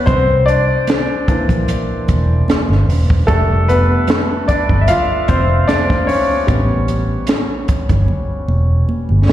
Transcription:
0.06 0.75 C2 loud
0.06 0.45 C4 medium
0.06 0.48 C5 medium
0.06 kick loud
0.06 closed hi-hat medium
0.06 muted conga soft
0.46 1.27 D4 medium
0.46 2.83 D5 medium
0.46 closed hi-hat medium
0.87 snare medium
0.87 closed hi-hat medium
0.87 high conga medium
1.28 1.82 E3 soft
1.28 1.82 A#3 soft
1.28 1.82 D4 medium
1.28 muted fingered electric bass stroke soft
1.28 kick medium
1.28 closed hi-hat medium
1.49 1.65 A#1 medium
1.49 kick medium
1.49 closed hi-hat soft
1.49 low conga medium
1.68 closed hi-hat medium
1.68 muted conga soft
2.08 2.42 E1 medium
2.08 kick medium
2.08 closed hi-hat medium
2.08 muted conga soft
2.48 snare medium
2.48 closed hi-hat medium
2.48 high conga medium
2.69 2.85 G1 medium
2.69 snare soft
2.69 high conga medium
2.88 3.22 E1 medium
2.88 open hi-hat medium
3.10 kick medium
3.27 3.95 F1 medium
3.27 6.45 G3 medium
3.27 3.66 A3 medium
3.27 4.48 D4 medium
3.27 3.69 A4 medium
3.27 kick medium
3.27 closed hi-hat medium
3.27 muted conga soft
3.68 4.45 B3 medium
3.68 4.51 B4 medium
3.68 closed hi-hat medium
3.68 muted conga soft
4.07 snare loud
4.07 closed hi-hat medium
4.07 high conga medium
4.48 4.80 D4 medium
4.48 4.82 D5 medium
4.48 muted fingered electric bass stroke soft
4.48 kick medium
4.48 closed hi-hat medium
4.69 4.85 G1 medium
4.69 kick medium
4.69 low conga medium
4.81 4.88 E5 medium
4.88 5.26 F4 medium
4.88 5.29 F5 medium
4.88 closed hi-hat medium
4.88 muted conga soft
5.28 5.63 F1 medium
5.28 5.66 C4 medium
5.28 5.69 C5 medium
5.28 kick medium
5.28 closed hi-hat medium
5.28 muted conga soft
5.68 6.05 D4 medium
5.68 6.09 D5 medium
5.68 snare medium
5.68 closed hi-hat medium
5.68 high conga medium
5.89 kick medium
5.89 snare soft
5.89 high conga medium
6.07 6.47 C#4 medium
6.07 8.84 C#5 medium
6.07 open hi-hat medium
6.47 7.16 A1 loud
6.47 7.64 G3 soft
6.47 7.64 B3 soft
6.47 7.65 C#4 medium
6.47 kick medium
6.47 closed hi-hat medium
6.47 muted conga soft
6.88 closed hi-hat medium
6.88 muted conga soft
7.27 snare loud
7.27 closed hi-hat medium
7.27 high conga medium
7.68 muted fingered electric bass stroke soft
7.68 kick medium
7.68 closed hi-hat medium
7.89 8.05 G1 medium
7.89 kick medium
7.89 closed hi-hat soft
7.89 low conga medium
8.08 muted conga soft
8.48 8.82 E1 medium
8.48 muted conga soft
8.89 high conga medium
9.09 9.26 G1 medium
9.09 high conga medium
9.28 9.33 C#2 medium
9.28 snare medium

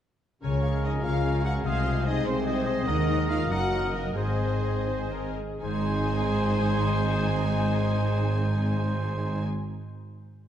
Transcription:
0.42 0.98 C#2 soft
0.42 1.67 C#3 soft
0.42 0.98 C#3 soft
0.42 1.62 F3 soft
0.42 3.47 G#3 soft
0.42 0.81 C#4 medium
0.42 0.62 F4 soft
0.42 2.84 G#4 soft
0.42 1.68 A#4 medium
0.42 0.81 C#5 soft
0.42 0.62 C#5 soft
0.42 0.82 C#5 soft
0.42 0.62 G#5 soft
0.62 0.84 G#4 soft
0.62 0.83 F5 soft
0.62 0.84 F5 soft
0.62 0.84 C#6 soft
0.83 1.05 D#4 medium
0.83 1.05 F4 soft
0.83 1.43 G#4 soft
0.83 1.05 C#5 soft
0.83 0.92 D#5 soft
0.83 1.04 D#5 medium
0.83 1.04 G#5 soft
1.03 1.58 C#2 soft
1.03 1.58 C#3 soft
1.03 1.44 F4 medium
1.03 1.67 F4 soft
1.03 1.25 G#4 soft
1.03 1.24 F5 soft
1.03 1.44 F5 medium
1.03 1.25 F5 soft
1.03 1.44 F5 medium
1.03 1.25 C#6 soft
1.22 1.44 F4 soft
1.22 1.44 C#5 soft
1.22 1.42 G#5 soft
1.43 1.65 F#4 medium
1.43 2.04 G#4 soft
1.43 1.66 G#4 soft
1.43 1.65 F5 soft
1.43 1.66 F5 soft
1.43 1.52 F#5 medium
1.43 1.54 F#5 soft
1.43 1.65 C#6 soft
1.63 2.19 C2 medium
1.63 2.88 C3 soft
1.63 2.19 C3 medium
1.63 4.12 D#3 medium
1.63 2.27 G#4 medium
1.63 1.83 C5 medium
1.63 1.84 C5 medium
1.63 1.84 D#5 soft
1.63 2.05 F5 medium
1.63 1.83 G#5 medium
1.67 2.06 F4 medium
1.81 2.89 G#3 soft
1.81 2.04 D#5 soft
1.81 2.04 C6 soft
1.87 2.07 G#4 soft
1.87 2.05 C5 soft
2.02 2.26 D#4 medium
2.02 2.64 G#4 soft
2.02 2.25 C5 soft
2.02 2.26 C5 soft
2.02 2.25 D#5 medium
2.02 2.24 G#5 soft
2.07 2.26 D#5 medium
2.07 2.27 D#5 soft
2.23 2.80 C2 medium
2.23 2.80 C3 medium
2.23 3.07 D#4 soft
2.23 2.47 G#4 soft
2.23 2.86 C5 medium
2.23 2.45 D#5 soft
2.23 2.45 C6 soft
2.27 2.88 C4 medium
2.27 2.46 C5 soft
2.27 2.36 C5 medium
2.27 2.88 C5 medium
2.44 2.65 C5 soft
2.44 3.50 D#5 soft
2.44 2.66 D#5 soft
2.44 2.66 D#5 medium
2.44 2.64 G#5 soft
2.66 2.89 G#4 medium
2.66 2.87 G#4 soft
2.66 2.87 C5 soft
2.66 3.54 D#5 medium
2.66 2.84 D#5 soft
2.66 2.88 C6 medium
2.86 3.46 D#2 medium
2.86 3.46 D#3 medium
2.86 4.18 D#3 medium
2.86 3.29 D#4 medium
2.86 4.14 A#4 medium
2.86 3.47 A#4 medium
2.86 3.45 D#5 medium
2.86 3.28 D#5 medium
2.86 3.29 D#5 medium
2.86 3.47 D#5 medium
2.86 3.46 F#5 medium
3.08 4.86 D#4 soft
3.28 3.50 F4 medium
3.28 3.49 F5 medium
3.28 3.50 F5 medium
3.48 4.17 F#1 medium
3.48 4.16 F#2 medium
3.48 4.16 F#3 soft
3.48 3.94 F#4 medium
3.48 4.15 A#4 medium
3.48 4.14 D#5 soft
3.48 4.15 D#5 medium
3.48 3.92 D#5 soft
3.48 4.14 F#5 soft
3.48 3.93 F#5 medium
3.48 3.94 F#5 medium
3.52 4.16 A#4 medium
3.93 4.05 A#3 medium
3.93 4.04 A#4 soft
3.93 4.16 A#4 medium
3.93 5.10 D#5 soft
4.15 5.34 G#1 soft
4.15 5.61 G#2 soft
4.15 5.34 G#2 soft
4.15 5.34 D#3 soft
4.15 5.36 G#3 soft
4.15 5.33 C4 medium
4.15 4.81 G#4 soft
4.15 5.36 G#4 soft
4.15 5.33 C5 medium
4.15 5.21 C5 medium
4.15 5.34 C5 soft
4.15 5.33 D#5 soft
4.15 4.80 D#5 soft
4.15 5.33 G#5 soft
4.39 5.68 G#3 soft
4.62 5.36 G#4 soft
4.85 5.81 D#4 soft
4.85 5.09 C5 medium
5.11 5.36 A#4 soft
5.11 5.96 D#5 soft
5.36 5.61 G#4 soft
5.36 5.88 G#4 soft
5.61 9.44 G#1 medium
5.61 9.44 G#2 medium
5.61 9.60 G#2 medium
5.61 9.43 D#3 medium
5.61 9.44 G#3 medium
5.61 9.43 C4 medium
5.61 9.44 D#4 medium
5.61 9.43 G#4 medium
5.61 9.44 G#4 medium
5.61 9.44 C5 medium
5.61 9.43 G#5 medium
5.61 9.45 G#5 medium
5.69 9.67 G#3 soft
5.75 9.74 C4 soft
5.82 9.81 D#4 soft
5.90 9.88 G#4 soft
5.97 9.95 D#5 medium

